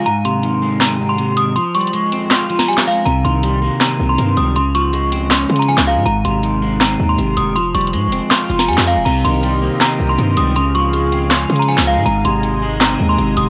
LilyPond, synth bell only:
\new Staff \with { instrumentName = "Synth bell" } { \time 4/4 \key c \phrygian \tempo 4 = 160 bes''8 c'''4. bes''8. c'''8. ees'''8 | c'''8 des'''4. c'''8. bes''16 aes''8 f''8 | bes''8 c'''4. bes''8. c'''8. ees'''8 | c'''8 des'''4. c'''8. bes''16 aes''8 f''8 |
bes''8 c'''4. bes''8. c'''8. ees'''8 | c'''8 des'''4. c'''8. bes''16 aes''8 f''8 | bes''8 c'''4. bes''8. c'''8. ees'''8 | c'''8 des'''4. c'''8. bes''16 aes''8 f''8 |
bes''8 c'''4. bes''8. c'''8. ees'''8 | }